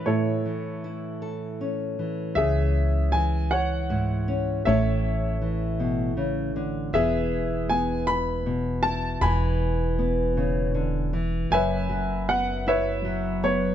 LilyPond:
<<
  \new Staff \with { instrumentName = "Upright piano" } { \time 6/8 \key a \major \tempo 4. = 52 << { cis''2 r4 | e''4 gis''8 fis''4. | e''2~ e''8 r8 | e''4 gis''8 b''4 a''8 |
b''2~ b''8 r8 | gis''4 fis''8 e''4 cis''8 | } \\ { <e' a'>2 r4 | gis'4. cis''4. | cis''2~ cis''8 r8 | gis'4. r4. |
gis''2~ gis''8 r8 | <b' e''>4. <b' cis''>4. | } >> }
  \new Staff \with { instrumentName = "Nylon-string guitar" } { \clef bass \time 6/8 \key a \major << { r4 e'8 a'8 cis'4 | r2 e'8 cis'8 | <e cis' e' a'>2. | <b e' gis'>2~ <b e' gis'>8 e'8 |
r2. | r4 b8 e'4 b8 | } \\ { <a, e>8 e2 e8 | cis4 e4 gis,4 | a,4 e8 b,8 cis8 d8 | e4 b4 b,4 |
e4 b8 cis8 d8 e8 | fis,8 fis4. fis4 | } >> }
  \new Staff \with { instrumentName = "Upright bass" } { \clef bass \time 6/8 \key a \major r2. | cis,2. | a,,2. | e,,2. |
e,,2. | fis,,2. | }
>>